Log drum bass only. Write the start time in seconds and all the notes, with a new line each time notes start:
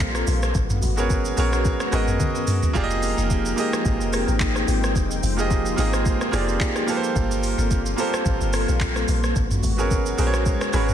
Already playing: A#1
0.28 A#1
0.55 G#1
0.83 G#1
1.38 A#1
1.93 G#1
2.75 F1
3.18 F1
3.85 G#1
4.01 F1
4.28 G#1
4.68 G#1
4.96 F1
5.23 F1
5.78 G#1
6.33 F1
7.16 G1
7.58 G1
8.26 G#1
8.41 G1
8.69 A#1
9.09 A#1
9.36 G#1
9.64 G#1
10.19 A#1
10.74 G#1